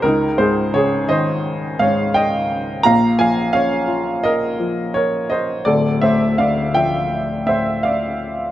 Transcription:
0, 0, Header, 1, 2, 480
1, 0, Start_track
1, 0, Tempo, 704225
1, 22, Time_signature, 4, 2, 24, 8
1, 3863, Tempo, 729040
1, 5737, End_track
2, 0, Start_track
2, 0, Title_t, "Upright piano"
2, 0, Program_c, 0, 0
2, 0, Control_c, 0, 64, 127
2, 16, Note_on_c, 0, 70, 86
2, 23, Note_on_c, 0, 37, 59
2, 30, Control_c, 0, 64, 0
2, 35, Note_on_c, 0, 63, 68
2, 170, Control_c, 0, 64, 127
2, 252, Note_off_c, 0, 63, 0
2, 259, Note_on_c, 0, 72, 77
2, 264, Note_on_c, 0, 44, 47
2, 266, Note_off_c, 0, 70, 0
2, 273, Note_on_c, 0, 68, 59
2, 493, Note_off_c, 0, 68, 0
2, 501, Note_on_c, 0, 49, 46
2, 504, Note_on_c, 0, 73, 86
2, 509, Note_off_c, 0, 72, 0
2, 517, Note_on_c, 0, 68, 67
2, 728, Note_off_c, 0, 73, 0
2, 735, Note_off_c, 0, 68, 0
2, 737, Note_on_c, 0, 51, 54
2, 740, Note_on_c, 0, 75, 81
2, 755, Note_on_c, 0, 72, 67
2, 1199, Note_off_c, 0, 44, 0
2, 1203, Note_off_c, 0, 72, 0
2, 1223, Note_on_c, 0, 77, 85
2, 1225, Note_on_c, 0, 44, 50
2, 1238, Note_off_c, 0, 75, 0
2, 1238, Note_on_c, 0, 73, 66
2, 1434, Note_off_c, 0, 49, 0
2, 1453, Note_off_c, 0, 73, 0
2, 1461, Note_on_c, 0, 79, 87
2, 1469, Note_off_c, 0, 77, 0
2, 1473, Note_on_c, 0, 75, 74
2, 1669, Note_off_c, 0, 51, 0
2, 1910, Note_off_c, 0, 79, 0
2, 1911, Note_off_c, 0, 37, 0
2, 1915, Note_off_c, 0, 75, 0
2, 1916, Note_off_c, 0, 44, 0
2, 1932, Note_on_c, 0, 82, 101
2, 1941, Note_on_c, 0, 34, 56
2, 1944, Note_on_c, 0, 46, 68
2, 1947, Control_c, 0, 64, 0
2, 1949, Note_on_c, 0, 77, 82
2, 2073, Control_c, 0, 64, 127
2, 2165, Note_off_c, 0, 77, 0
2, 2172, Note_on_c, 0, 80, 87
2, 2174, Note_on_c, 0, 53, 51
2, 2180, Note_off_c, 0, 82, 0
2, 2187, Note_on_c, 0, 77, 74
2, 2395, Note_off_c, 0, 77, 0
2, 2405, Note_on_c, 0, 77, 90
2, 2408, Note_on_c, 0, 61, 51
2, 2418, Note_off_c, 0, 80, 0
2, 2419, Note_on_c, 0, 73, 66
2, 2642, Note_on_c, 0, 65, 51
2, 2870, Note_off_c, 0, 73, 0
2, 2887, Note_on_c, 0, 75, 89
2, 2898, Note_on_c, 0, 70, 69
2, 2905, Note_off_c, 0, 77, 0
2, 3109, Note_off_c, 0, 53, 0
2, 3133, Note_on_c, 0, 53, 49
2, 3348, Note_off_c, 0, 61, 0
2, 3352, Note_off_c, 0, 70, 0
2, 3368, Note_on_c, 0, 73, 78
2, 3385, Note_on_c, 0, 70, 58
2, 3388, Note_off_c, 0, 75, 0
2, 3585, Note_off_c, 0, 65, 0
2, 3596, Note_off_c, 0, 73, 0
2, 3605, Note_off_c, 0, 70, 0
2, 3610, Note_on_c, 0, 75, 77
2, 3624, Note_on_c, 0, 72, 57
2, 3835, Note_off_c, 0, 34, 0
2, 3837, Note_off_c, 0, 46, 0
2, 3837, Note_off_c, 0, 53, 0
2, 3840, Note_off_c, 0, 75, 0
2, 3848, Note_off_c, 0, 72, 0
2, 3851, Note_on_c, 0, 74, 82
2, 3858, Note_on_c, 0, 26, 53
2, 3858, Note_on_c, 0, 38, 56
2, 3862, Note_on_c, 0, 69, 63
2, 3868, Control_c, 0, 64, 0
2, 3968, Control_c, 0, 64, 127
2, 4077, Note_off_c, 0, 74, 0
2, 4083, Note_off_c, 0, 69, 0
2, 4092, Note_on_c, 0, 76, 79
2, 4097, Note_on_c, 0, 45, 47
2, 4103, Note_on_c, 0, 72, 59
2, 4319, Note_off_c, 0, 76, 0
2, 4325, Note_off_c, 0, 72, 0
2, 4333, Note_on_c, 0, 77, 78
2, 4335, Note_on_c, 0, 50, 44
2, 4346, Note_on_c, 0, 74, 57
2, 4559, Note_off_c, 0, 77, 0
2, 4566, Note_off_c, 0, 74, 0
2, 4569, Note_on_c, 0, 53, 45
2, 4572, Note_on_c, 0, 79, 85
2, 4586, Note_on_c, 0, 76, 58
2, 5021, Note_off_c, 0, 79, 0
2, 5024, Note_off_c, 0, 45, 0
2, 5028, Note_off_c, 0, 76, 0
2, 5045, Note_on_c, 0, 45, 42
2, 5048, Note_on_c, 0, 76, 74
2, 5062, Note_on_c, 0, 72, 55
2, 5263, Note_off_c, 0, 50, 0
2, 5273, Note_off_c, 0, 76, 0
2, 5280, Note_off_c, 0, 72, 0
2, 5288, Note_on_c, 0, 77, 71
2, 5300, Note_on_c, 0, 74, 53
2, 5503, Note_off_c, 0, 53, 0
2, 5737, Note_off_c, 0, 26, 0
2, 5737, Note_off_c, 0, 38, 0
2, 5737, Note_off_c, 0, 45, 0
2, 5737, Note_off_c, 0, 74, 0
2, 5737, Note_off_c, 0, 77, 0
2, 5737, End_track
0, 0, End_of_file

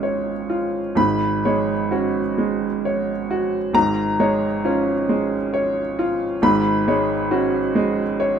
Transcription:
0, 0, Header, 1, 2, 480
1, 0, Start_track
1, 0, Tempo, 927357
1, 506, Time_signature, 6, 3, 24, 8
1, 1943, Tempo, 884956
1, 4458, End_track
2, 0, Start_track
2, 0, Title_t, "Grand piano"
2, 0, Program_c, 0, 0
2, 0, Control_c, 0, 64, 127
2, 0, Note_on_c, 0, 32, 52
2, 0, Note_on_c, 0, 44, 58
2, 0, Note_on_c, 0, 56, 46
2, 0, Note_on_c, 0, 61, 45
2, 0, Note_on_c, 0, 65, 45
2, 0, Note_on_c, 0, 73, 53
2, 0, Note_on_c, 0, 82, 75
2, 15, Note_off_c, 0, 73, 0
2, 15, Note_on_c, 0, 73, 49
2, 163, Note_off_c, 0, 56, 0
2, 256, Note_off_c, 0, 65, 0
2, 256, Note_on_c, 0, 65, 54
2, 404, Note_off_c, 0, 73, 0
2, 472, Note_off_c, 0, 32, 0
2, 474, Note_off_c, 0, 44, 0
2, 493, Note_on_c, 0, 32, 55
2, 501, Note_on_c, 0, 83, 73
2, 502, Note_off_c, 0, 65, 0
2, 502, Note_on_c, 0, 44, 63
2, 513, Control_c, 0, 64, 0
2, 514, Note_off_c, 0, 61, 0
2, 519, Note_off_c, 0, 82, 0
2, 601, Control_c, 0, 64, 127
2, 752, Note_on_c, 0, 73, 56
2, 754, Note_on_c, 0, 56, 48
2, 892, Note_off_c, 0, 83, 0
2, 989, Note_on_c, 0, 66, 49
2, 993, Note_on_c, 0, 61, 50
2, 1137, Note_off_c, 0, 73, 0
2, 1138, Note_off_c, 0, 56, 0
2, 1233, Note_on_c, 0, 56, 51
2, 1376, Note_off_c, 0, 66, 0
2, 1378, Note_off_c, 0, 61, 0
2, 1477, Note_on_c, 0, 73, 51
2, 1615, Note_off_c, 0, 56, 0
2, 1711, Note_on_c, 0, 66, 57
2, 1852, Note_off_c, 0, 73, 0
2, 1916, Note_off_c, 0, 32, 0
2, 1920, Note_off_c, 0, 44, 0
2, 1933, Note_on_c, 0, 32, 58
2, 1937, Note_on_c, 0, 44, 61
2, 1939, Note_on_c, 0, 82, 82
2, 1944, Note_off_c, 0, 66, 0
2, 1954, Control_c, 0, 64, 0
2, 2030, Control_c, 0, 64, 127
2, 2182, Note_on_c, 0, 56, 52
2, 2185, Note_on_c, 0, 73, 59
2, 2332, Note_off_c, 0, 82, 0
2, 2427, Note_on_c, 0, 65, 49
2, 2430, Note_on_c, 0, 61, 53
2, 2572, Note_off_c, 0, 56, 0
2, 2574, Note_off_c, 0, 73, 0
2, 2669, Note_on_c, 0, 56, 56
2, 2812, Note_off_c, 0, 65, 0
2, 2814, Note_off_c, 0, 61, 0
2, 2909, Note_on_c, 0, 73, 57
2, 3052, Note_off_c, 0, 56, 0
2, 3155, Note_on_c, 0, 65, 65
2, 3292, Note_off_c, 0, 73, 0
2, 3361, Note_off_c, 0, 32, 0
2, 3364, Note_off_c, 0, 44, 0
2, 3390, Note_on_c, 0, 32, 66
2, 3391, Note_off_c, 0, 65, 0
2, 3394, Note_on_c, 0, 44, 73
2, 3394, Note_on_c, 0, 83, 79
2, 3396, Control_c, 0, 64, 0
2, 3474, Control_c, 0, 64, 127
2, 3636, Note_on_c, 0, 56, 57
2, 3638, Note_on_c, 0, 73, 57
2, 3774, Note_off_c, 0, 83, 0
2, 3872, Note_on_c, 0, 66, 61
2, 3873, Note_on_c, 0, 61, 55
2, 4015, Note_off_c, 0, 56, 0
2, 4016, Note_off_c, 0, 73, 0
2, 4112, Note_on_c, 0, 56, 66
2, 4252, Note_off_c, 0, 66, 0
2, 4253, Note_off_c, 0, 61, 0
2, 4354, Note_on_c, 0, 73, 66
2, 4458, Note_off_c, 0, 32, 0
2, 4458, Note_off_c, 0, 44, 0
2, 4458, Note_off_c, 0, 56, 0
2, 4458, Note_off_c, 0, 73, 0
2, 4458, End_track
0, 0, End_of_file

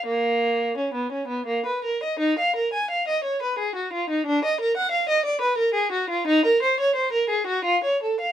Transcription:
0, 0, Header, 1, 2, 480
1, 0, Start_track
1, 0, Tempo, 713436
1, 32, Time_signature, 3, 2, 24, 8
1, 1952, Tempo, 672646
1, 3872, Tempo, 692042
1, 5764, End_track
2, 0, Start_track
2, 0, Title_t, "Violin"
2, 0, Program_c, 0, 40
2, 42, Note_on_c, 0, 58, 68
2, 509, Note_off_c, 0, 58, 0
2, 521, Note_on_c, 0, 61, 48
2, 632, Note_on_c, 0, 59, 46
2, 633, Note_off_c, 0, 61, 0
2, 747, Note_off_c, 0, 59, 0
2, 754, Note_on_c, 0, 61, 43
2, 860, Note_on_c, 0, 59, 46
2, 868, Note_off_c, 0, 61, 0
2, 980, Note_off_c, 0, 59, 0
2, 983, Note_on_c, 0, 58, 55
2, 1103, Note_off_c, 0, 58, 0
2, 1115, Note_on_c, 0, 71, 42
2, 1232, Note_off_c, 0, 71, 0
2, 1242, Note_on_c, 0, 70, 47
2, 1358, Note_off_c, 0, 70, 0
2, 1368, Note_on_c, 0, 75, 44
2, 1476, Note_on_c, 0, 63, 66
2, 1483, Note_off_c, 0, 75, 0
2, 1597, Note_off_c, 0, 63, 0
2, 1607, Note_on_c, 0, 77, 56
2, 1720, Note_off_c, 0, 77, 0
2, 1722, Note_on_c, 0, 70, 50
2, 1835, Note_off_c, 0, 70, 0
2, 1839, Note_on_c, 0, 80, 50
2, 1951, Note_off_c, 0, 80, 0
2, 1954, Note_on_c, 0, 77, 52
2, 2072, Note_off_c, 0, 77, 0
2, 2078, Note_on_c, 0, 75, 59
2, 2194, Note_on_c, 0, 73, 53
2, 2195, Note_off_c, 0, 75, 0
2, 2314, Note_off_c, 0, 73, 0
2, 2325, Note_on_c, 0, 71, 55
2, 2441, Note_off_c, 0, 71, 0
2, 2442, Note_on_c, 0, 68, 56
2, 2560, Note_on_c, 0, 66, 45
2, 2561, Note_off_c, 0, 68, 0
2, 2681, Note_off_c, 0, 66, 0
2, 2686, Note_on_c, 0, 65, 51
2, 2805, Note_off_c, 0, 65, 0
2, 2806, Note_on_c, 0, 63, 57
2, 2924, Note_on_c, 0, 62, 79
2, 2926, Note_off_c, 0, 63, 0
2, 3044, Note_off_c, 0, 62, 0
2, 3054, Note_on_c, 0, 75, 60
2, 3168, Note_off_c, 0, 75, 0
2, 3170, Note_on_c, 0, 70, 62
2, 3284, Note_off_c, 0, 70, 0
2, 3285, Note_on_c, 0, 78, 72
2, 3389, Note_on_c, 0, 77, 64
2, 3399, Note_off_c, 0, 78, 0
2, 3509, Note_off_c, 0, 77, 0
2, 3514, Note_on_c, 0, 75, 67
2, 3628, Note_on_c, 0, 74, 63
2, 3631, Note_off_c, 0, 75, 0
2, 3744, Note_on_c, 0, 71, 66
2, 3747, Note_off_c, 0, 74, 0
2, 3860, Note_on_c, 0, 70, 69
2, 3865, Note_off_c, 0, 71, 0
2, 3975, Note_on_c, 0, 68, 65
2, 3981, Note_off_c, 0, 70, 0
2, 4098, Note_off_c, 0, 68, 0
2, 4099, Note_on_c, 0, 66, 62
2, 4220, Note_off_c, 0, 66, 0
2, 4224, Note_on_c, 0, 65, 65
2, 4343, Note_on_c, 0, 63, 85
2, 4345, Note_off_c, 0, 65, 0
2, 4465, Note_off_c, 0, 63, 0
2, 4470, Note_on_c, 0, 70, 63
2, 4586, Note_off_c, 0, 70, 0
2, 4588, Note_on_c, 0, 72, 61
2, 4704, Note_off_c, 0, 72, 0
2, 4711, Note_on_c, 0, 73, 61
2, 4816, Note_on_c, 0, 72, 64
2, 4824, Note_off_c, 0, 73, 0
2, 4935, Note_off_c, 0, 72, 0
2, 4936, Note_on_c, 0, 70, 64
2, 5053, Note_off_c, 0, 70, 0
2, 5053, Note_on_c, 0, 68, 57
2, 5171, Note_off_c, 0, 68, 0
2, 5173, Note_on_c, 0, 66, 63
2, 5292, Note_off_c, 0, 66, 0
2, 5297, Note_on_c, 0, 65, 70
2, 5415, Note_off_c, 0, 65, 0
2, 5430, Note_on_c, 0, 73, 52
2, 5545, Note_off_c, 0, 73, 0
2, 5562, Note_on_c, 0, 69, 46
2, 5675, Note_off_c, 0, 69, 0
2, 5684, Note_on_c, 0, 77, 50
2, 5764, Note_off_c, 0, 77, 0
2, 5764, End_track
0, 0, End_of_file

